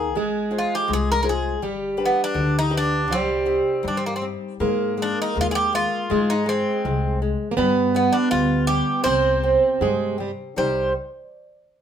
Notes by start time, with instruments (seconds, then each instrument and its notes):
Already playing: upright bass D#2, nylon-string guitar D#3, twelve-string acoustic guitar A#3, bouzouki G#4
0.15 upright bass G#1, nylon-string guitar G#3, twelve-string acoustic guitar G#3
0.51 nylon-string guitar F4 G#4 C5
0.58 bouzouki F4
0.75 bouzouki G4
0.88 upright bass C2, nylon-string guitar G#3
0.93 bouzouki G#4
1.12 bouzouki A#4
1.23 nylon-string guitar F4 G#4 C5, bouzouki A#4
1.29 bouzouki G#4
1.62 upright bass G1, nylon-string guitar G3, twelve-string acoustic guitar G3
1.97 nylon-string guitar D4 G4 B4
2.06 bouzouki B3
2.24 bouzouki D4
2.34 upright bass D2, nylon-string guitar D3
2.59 bouzouki D#4
2.70 nylon-string guitar D4 G4 B4
2.77 bouzouki D4
3.08 upright bass C2, nylon-string guitar C3, twelve-string acoustic guitar G3
3.12 bouzouki C4
3.46 nylon-string guitar C4 D#4 G4
3.83 upright bass G2, nylon-string guitar G3
3.88 bouzouki D4
3.97 bouzouki C4
4.06 bouzouki A#3
4.16 bouzouki C4
4.22 nylon-string guitar C4 D#4 G4
4.60 upright bass G#2, nylon-string guitar G#3, twelve-string acoustic guitar A#3
4.97 nylon-string guitar G#3
5.02 bouzouki D4
5.22 bouzouki D#4
5.36 upright bass D#2, nylon-string guitar G#3
5.41 bouzouki F4
5.51 bouzouki G#4
5.55 bouzouki G4
5.73 nylon-string guitar G#3, bouzouki F4
6.10 upright bass G#2, nylon-string guitar G#3, twelve-string acoustic guitar G#3
6.30 bouzouki D#4
6.46 nylon-string guitar G#3, bouzouki C4
6.85 upright bass C2, nylon-string guitar G#3
7.22 nylon-string guitar G#3
7.51 twelve-string acoustic guitar A#3
7.57 upright bass G2, nylon-string guitar G3, twelve-string acoustic guitar B3
7.94 nylon-string guitar G3, bouzouki B3
8.13 bouzouki D4
8.31 upright bass D2, nylon-string guitar G3, bouzouki F4
8.67 nylon-string guitar G3, bouzouki G4
9.04 upright bass C2, nylon-string guitar C3, twelve-string acoustic guitar C4, bouzouki C5
9.43 nylon-string guitar C4
9.81 upright bass G2, twelve-string acoustic guitar G#3, nylon-string guitar G4
10.18 twelve-string acoustic guitar G3, nylon-string guitar C4
10.56 upright bass C2, nylon-string guitar C3 G3 C4 D#4 G4, twelve-string acoustic guitar G3, bouzouki C5